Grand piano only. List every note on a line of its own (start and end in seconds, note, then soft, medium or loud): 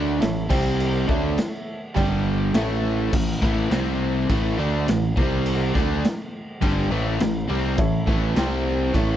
0.19 0.49 A4 medium
0.19 0.50 C#5 medium
0.19 0.50 E5 loud
0.49 0.96 G4 medium
0.49 0.97 C5 medium
0.49 0.97 G5 loud
1.07 1.78 A4 medium
1.07 1.79 C#5 medium
1.07 1.79 E5 loud
1.94 2.42 G4 medium
1.94 2.42 D5 medium
1.94 2.43 G5 medium
2.54 3.01 A4 medium
2.54 3.01 C#5 medium
2.54 3.01 E5 medium
7.77 8.24 E4 medium
7.77 8.24 A4 medium
7.77 8.25 C#5 medium
7.77 8.25 E5 loud
8.36 8.82 C4 medium
8.36 8.83 G4 medium
8.36 8.83 C5 medium
8.36 8.83 G5 medium
8.94 9.17 E4 medium
8.94 9.17 A4 medium
8.94 9.17 C#5 medium
8.94 9.17 E5 medium